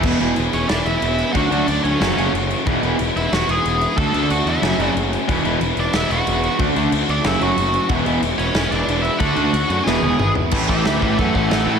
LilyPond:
<<
  \new Staff \with { instrumentName = "Lead electric guitar" } { \time 4/4 \key e \mixolydian \tempo 4 = 183 r4. <cis' cis''>8 <d' d''>8 <e' e''>4. | <fis' fis''>4 <d' d''>8 <cis' cis''>4. r4 | r4. <e' e''>8 <fis' fis''>8 <gis' gis''>4. | <a' a''>4 <fis' fis''>8 <e' e''>4. r4 |
r4. <d' d''>8 <e' e''>8 <fis' fis''>4. | r4. <d' d''>8 <e' e''>8 <fis' fis''>4. | r4. <cis' cis''>4 <d' d''>4 <e' e''>8 | <fis' fis''>2 <gis' gis''>4. r8 |
r8 <g' e''>8 <g' e''>8 <g' e''>8 <a' fis''>8 <a' fis''>8 <a' fis''>8 <cis'' a''>8 | }
  \new Staff \with { instrumentName = "Overdriven electric guitar" } { \time 4/4 \key e \mixolydian <e b e' gis'>2 <e b e' gis'>2 | <d fis a d' fis'>2 <fis a cis' fis'>2 | <e gis b e'>2 <e gis b e'>2 | <d a d' fis'>2 <fis a cis' fis'>2 |
<e gis b e'>2 <e gis b e'>2 | <d a d' fis'>2 <fis a cis' fis'>2 | <e gis b e'>2 <e gis b e'>2 | <d a d' fis'>2 <e gis b e'>2 |
<a, e a cis' e'>2.~ <a, e a cis' e'>8 <a, e a cis' e'>8 | }
  \new Staff \with { instrumentName = "Distorted electric guitar" } { \clef bass \time 4/4 \key e \mixolydian <e, b, e>8 <e, b, e>8 r2. | <d a d'>8 <d a d'>8 r4 <fis, cis fis>8 <fis, cis fis>8 r4 | <e, b, e>8 <e, b, e>8 r2. | <d a d'>8 <d a d'>8 r4 <fis, cis fis>8 <fis, cis fis>8 r4 |
<e, b, e>8 <e, b, e>8 r2. | <d a d'>8 <d a d'>8 r4 <fis, cis fis>8 <fis, cis fis>8 r4 | <e, b, e>8 <e, b, e>8 r2. | <d a d'>8 <d a d'>8 r4 <e, b, e>8 <e, b, e>8 r4 |
<a, e a>8 <a, e a>8 <a, e a>8 <a, e a>8 <a, e a>8 <a, e a>8 <a, e a>8 <a, e a>8 | }
  \new Staff \with { instrumentName = "Overdriven electric guitar" } { \clef bass \time 4/4 \key e \mixolydian <e, b, e>8 <e, b, e>8 r2. | <d a d'>8 <d a d'>8 r4 <fis, cis fis>8 <fis, cis fis>8 r4 | <e, b, e>8 <e, b, e>8 r2. | <d a d'>8 <d a d'>8 r4 <fis, cis fis>8 <fis, cis fis>8 r4 |
<e, b, e>8 <e, b, e>8 r2. | <d a d'>8 <d a d'>8 r4 <fis, cis fis>8 <fis, cis fis>8 r4 | <e, b, e>8 <e, b, e>8 r2. | <d a d'>8 <d a d'>8 r4 <e, b, e>8 <e, b, e>8 r4 |
<a, e a>8 <a, e a>8 <a, e a>8 <a, e a>8 <a, e a>8 <a, e a>8 <a, e a>8 <a, e a>8 | }
  \new Staff \with { instrumentName = "Picked electric bass" } { \clef bass \time 4/4 \key e \mixolydian e,,8 e,,8 e,,8 e,,8 e,,8 e,,8 e,,4 | d,8 d,8 d,8 d,8 fis,,8 fis,,8 fis,,4 | e,,8 e,,8 e,,8 e,,8 e,,8 e,,8 e,,4 | d,8 d,8 d,8 e,8 fis,,8 fis,,8 fis,,4 |
e,,8 e,,8 e,,8 e,,8 e,,8 e,,8 e,,4 | d,8 d,8 d,8 d,8 fis,,8 fis,,8 fis,,4 | e,,8 e,,8 e,,8 e,,8 e,,8 e,,8 e,,4 | d,8 d,8 d,8 fis,8 e,,8 e,,8 gis,,4 |
a,,8 a,,8 d,8 a,,8 fis,8 a,,8 a,,8 a,8 | }
  \new DrumStaff \with { instrumentName = "Drums" } \drummode { \time 4/4 <cymc bd>8 cymc8 cymc8 cymc8 <cymc sn>8 cymc8 cymc8 cymc8 | <cymc bd>8 cymc8 cymc8 cymc8 <cymc sn>8 cymc8 cymc8 cymc8 | <cymc bd>8 cymc8 cymc8 cymc8 <cymc sn>8 cymc8 cymc8 cymc8 | <cymc bd>8 cymc8 cymc8 cymc8 <cymc sn>8 cymc8 cymc8 cymc8 |
<cymc bd>8 cymc8 cymc8 cymc8 <cymc sn>8 cymc8 cymc8 cymc8 | <cymc bd>8 cymc8 cymc8 cymc8 <cymc sn>8 cymc8 cymc8 cymc8 | <cymc bd>8 cymc8 cymc8 cymc8 <cymc sn>8 cymc8 cymc8 cymc8 | <cymc bd>8 cymc8 cymc8 cymc8 sn8 tommh8 toml8 tomfh8 |
<cymc bd>8 bd8 <cymc sn>8 bd8 <cymc bd>8 bd8 <cymc sn>4 | }
>>